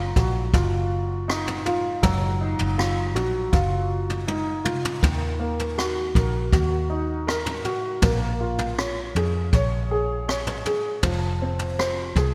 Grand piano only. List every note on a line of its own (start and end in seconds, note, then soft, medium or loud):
0.00 1.99 F#3 medium
0.00 0.87 D#4 soft
0.00 0.52 F4 soft
0.16 1.62 F#4 soft
0.54 1.64 F4 medium
1.28 2.40 D#4 medium
1.65 2.76 F4 soft
2.03 4.99 F#3 medium
2.41 3.87 D#4 soft
2.78 3.51 F4 soft
3.15 4.61 F#4 soft
3.52 4.63 F4 soft
4.27 5.00 D#4 soft
4.64 5.01 F4 soft
5.02 7.99 D#3 medium
5.40 6.86 A#3 soft
5.78 6.51 F#4 soft
6.16 7.26 A#4 soft
6.53 7.64 F#4 soft
6.90 7.99 D#4 soft
7.27 8.00 A#4 medium
7.65 8.02 F#4 medium
8.03 10.99 A#3 medium
8.40 9.86 F4 soft
8.78 9.52 C#5 soft
9.16 9.90 G#4 soft
9.54 10.27 C#5 medium
9.91 10.65 G#4 soft
10.28 11.01 C#5 medium
10.66 11.02 G#4 soft
11.04 12.34 F3 medium
11.42 12.34 C4 soft
11.79 12.34 C5 soft
12.17 12.34 G#4 soft